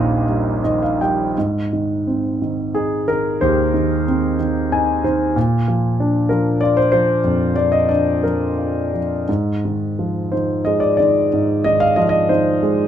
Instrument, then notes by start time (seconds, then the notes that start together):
grand piano
Already playing: A#1 A#2 D#3 G3 A#3 D#4 F4 G4 A#4 D#5 F5
0.28 G3
0.64 D#3 D#5
0.83 F5
1.01 G3 G5
1.38 G#2
1.73 D#3
2.07 C4
2.42 D#3
2.75 D#4 G#4
3.08 D#3 A#4
3.41 D#2 G4 C5
3.74 D#3
4.08 C4
4.40 D#3
4.72 D#4 G#5
5.04 D#3 C5
5.36 A#2
5.68 F3
6.00 D4
6.29 F3 A#4
6.61 F4 D5
6.77 C5
6.92 F3 C5
7.24 F2
7.56 F3 D5
7.72 D#5
7.89 D4 D5
8.23 F3 A#4
8.58 F4
8.93 F3
9.29 G#2
9.65 D#3
9.99 F3
10.32 D#3 C5
10.65 G#3 D#5
10.80 D5
10.97 D#3 D5
11.33 G#2
11.64 D#3 D#5
11.80 F5
11.96 F3 D#5
12.02 F5
12.09 D#5
12.29 D#3 C5
12.63 G#3